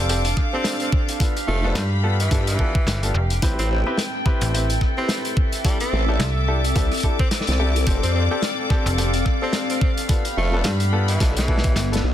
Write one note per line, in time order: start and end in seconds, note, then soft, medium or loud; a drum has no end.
0.00 0.35 F1 loud
0.00 4.33 D4 medium
0.00 1.16 A4 medium
0.00 1.21 C5 medium
0.00 3.38 F5 medium
0.00 3.43 F5 loud
0.00 2.11 A5 medium
0.00 1.18 D6 medium
0.09 0.20 C4 medium
0.09 0.20 D4 medium
0.09 0.20 G4 medium
0.09 0.20 A4 medium
0.09 closed hi-hat medium
0.25 closed hi-hat medium
0.37 kick medium
0.37 cross-stick soft
0.53 1.18 C4 medium
0.53 0.75 C4 loud
0.53 1.18 D4 medium
0.53 1.18 G4 medium
0.53 1.18 A4 medium
0.64 snare loud
0.64 closed hi-hat loud
0.80 0.88 C4 medium
0.80 closed hi-hat medium
0.92 kick loud
1.09 closed hi-hat medium
1.20 1.31 B3 medium
1.20 1.31 D4 medium
1.20 1.31 F4 medium
1.20 3.40 G4 medium
1.20 1.31 A4 medium
1.20 3.40 B5 medium
1.20 kick loud
1.20 closed hi-hat medium
1.37 closed hi-hat medium
1.47 1.74 F1 loud
1.47 1.71 A3 medium
1.64 1.78 B3 loud
1.64 1.78 D4 medium
1.64 1.78 F4 medium
1.64 1.78 A4 loud
1.64 6.54 G5 loud
1.75 2.29 G2 loud
1.75 snare loud
1.75 closed hi-hat medium
2.03 2.15 B3 medium
2.03 2.15 D4 medium
2.03 2.15 F4 medium
2.03 2.15 A4 loud
2.20 2.42 E3 medium
2.20 closed hi-hat medium
2.31 2.57 G2 loud
2.31 2.43 B3 medium
2.31 2.43 D4 medium
2.31 2.43 F4 medium
2.31 2.43 A4 loud
2.31 kick loud
2.31 closed hi-hat medium
2.47 3.03 E3 medium
2.47 cross-stick medium
2.47 closed hi-hat medium
2.59 2.71 B3 medium
2.59 2.71 D4 medium
2.59 2.70 F4 medium
2.59 2.70 A4 medium
2.59 kick medium
2.75 kick loud
2.87 3.13 G1 loud
2.87 snare loud
2.87 closed hi-hat medium
3.03 3.11 B3 medium
3.03 3.11 D4 medium
3.03 3.11 F4 medium
3.03 3.11 A4 medium
3.03 closed hi-hat medium
3.14 3.40 F1 loud
3.30 closed hi-hat medium
3.42 3.56 A1 loud
3.42 10.09 C4 medium
3.42 3.83 C4 medium
3.42 3.83 E4 medium
3.42 3.83 G4 medium
3.42 7.83 A4 medium
3.42 3.83 B4 loud
3.42 5.63 G5 medium
3.42 kick loud
3.42 closed hi-hat medium
3.59 3.84 A1 loud
3.59 3.66 C4 medium
3.59 closed hi-hat medium
3.71 3.81 C4 medium
3.83 3.95 C4 medium
3.83 3.95 E4 medium
3.83 3.95 G4 medium
3.83 10.83 A4 medium
3.83 3.95 B4 loud
3.98 snare loud
3.98 closed hi-hat medium
4.14 7.87 E5 medium
4.26 4.51 C4 loud
4.26 4.51 E4 medium
4.26 4.51 G4 medium
4.26 4.51 B4 loud
4.26 kick loud
4.26 cross-stick medium
4.41 4.79 A1 loud
4.41 closed hi-hat medium
4.54 4.65 C4 medium
4.54 4.65 E4 medium
4.54 4.65 G4 medium
4.54 4.65 B4 medium
4.54 closed hi-hat loud
4.70 closed hi-hat medium
4.81 kick medium
4.81 cross-stick soft
4.97 5.19 C4 loud
4.97 5.62 C4 medium
4.97 5.62 E4 medium
4.97 5.62 G4 medium
4.97 5.62 B4 medium
5.09 snare loud
5.09 closed hi-hat medium
5.25 closed hi-hat soft
5.37 kick loud
5.52 closed hi-hat medium
5.65 5.78 G3 loud
5.65 5.76 D4 medium
5.65 5.76 E4 medium
5.65 5.76 G4 medium
5.65 5.76 A4 medium
5.65 7.85 E5 medium
5.65 10.05 D6 medium
5.65 kick loud
5.65 closed hi-hat medium
5.80 6.02 C4 medium
5.80 closed hi-hat medium
5.93 6.19 A1 loud
6.09 6.22 D4 loud
6.09 6.22 E4 medium
6.09 6.22 G4 medium
6.09 6.22 A4 loud
6.20 6.74 C2 loud
6.20 snare loud
6.20 closed hi-hat medium
6.26 12.14 D5 loud
6.48 6.59 D4 medium
6.48 6.59 E4 medium
6.48 6.59 G4 medium
6.48 6.59 A4 loud
6.64 closed hi-hat medium
6.76 6.89 C2 loud
6.76 6.87 D4 medium
6.76 6.87 E4 medium
6.76 6.87 G4 medium
6.76 6.87 A4 loud
6.76 kick loud
6.76 closed hi-hat medium
6.91 cross-stick medium
6.91 closed hi-hat soft
6.94 closed hi-hat soft
6.97 closed hi-hat soft
7.00 7.15 D4 medium
7.00 7.15 G4 medium
7.00 7.15 A4 loud
7.00 kick medium
7.00 closed hi-hat medium
7.04 7.15 E4 medium
7.19 7.27 C4 medium
7.19 kick loud
7.31 7.41 C4 medium
7.31 snare loud
7.31 closed hi-hat medium
7.41 snare medium
7.47 7.85 C2 loud
7.47 snare medium
7.47 closed hi-hat medium
7.59 7.70 D4 loud
7.59 7.70 E4 medium
7.59 7.70 G4 medium
7.59 7.70 A4 loud
7.76 closed hi-hat medium
7.86 8.00 F1 loud
7.86 8.27 C4 medium
7.86 8.27 D4 medium
7.86 8.27 G4 medium
7.86 10.06 A4 medium
7.86 8.27 A4 loud
7.86 12.14 F5 medium
7.86 kick loud
7.86 closed hi-hat medium
8.03 8.28 F2 loud
8.03 8.10 C4 medium
8.03 closed hi-hat medium
8.15 8.25 C4 medium
8.15 12.14 F5 medium
8.31 8.39 C4 loud
8.31 8.39 D4 medium
8.31 8.39 G4 medium
8.31 8.39 A4 loud
8.42 snare loud
8.42 closed hi-hat medium
8.70 8.95 C4 loud
8.70 8.95 D4 medium
8.70 8.95 G4 medium
8.70 8.95 A4 loud
8.70 kick loud
8.70 cross-stick medium
8.70 snare soft
8.86 9.24 F1 loud
8.86 closed hi-hat medium
8.98 9.09 C4 medium
8.98 9.09 D4 medium
8.98 9.09 G4 medium
8.98 9.09 A4 loud
8.98 closed hi-hat medium
9.14 closed hi-hat medium
9.25 kick medium
9.25 cross-stick medium
9.42 10.06 C4 medium
9.42 9.64 C4 loud
9.42 10.06 D4 medium
9.42 10.06 G4 medium
9.42 10.06 A4 medium
9.53 snare loud
9.53 closed hi-hat medium
9.70 9.77 C4 medium
9.70 closed hi-hat medium
9.81 9.92 C4 medium
9.81 kick loud
9.97 closed hi-hat medium
10.09 10.20 B3 medium
10.09 12.14 B3 medium
10.09 10.20 D4 medium
10.09 10.20 F4 medium
10.09 12.14 G4 medium
10.09 10.20 A4 medium
10.09 12.14 B5 medium
10.09 kick loud
10.09 closed hi-hat medium
10.25 closed hi-hat medium
10.34 10.63 F1 medium
10.34 10.61 A3 medium
10.34 12.14 G4 medium
10.53 10.67 B3 loud
10.53 10.67 D4 medium
10.53 10.67 F4 medium
10.53 10.67 A4 loud
10.64 11.18 G2 loud
10.64 snare loud
10.64 closed hi-hat medium
10.80 closed hi-hat soft
10.92 11.04 B3 medium
10.92 11.04 D4 medium
10.92 11.04 F4 medium
10.92 11.04 A4 loud
11.08 11.31 E3 medium
11.08 closed hi-hat medium
11.20 11.74 B1 loud
11.20 11.31 B3 medium
11.20 11.31 D4 medium
11.20 11.31 F4 medium
11.20 11.31 A4 loud
11.20 kick loud
11.20 snare medium
11.20 closed hi-hat loud
11.37 11.92 E3 loud
11.37 snare medium
11.37 closed hi-hat medium
11.48 11.59 B3 medium
11.48 11.59 D4 medium
11.48 11.59 F4 medium
11.48 11.59 A4 medium
11.48 kick medium
11.58 snare medium
11.64 kick loud
11.64 closed hi-hat medium
11.76 12.02 G1 loud
11.76 snare medium
11.76 closed hi-hat medium
11.92 12.00 B3 medium
11.92 12.00 D4 medium
11.92 12.00 F4 medium
11.92 12.00 A4 medium
11.92 snare loud
11.92 closed hi-hat medium
12.04 12.14 B1 loud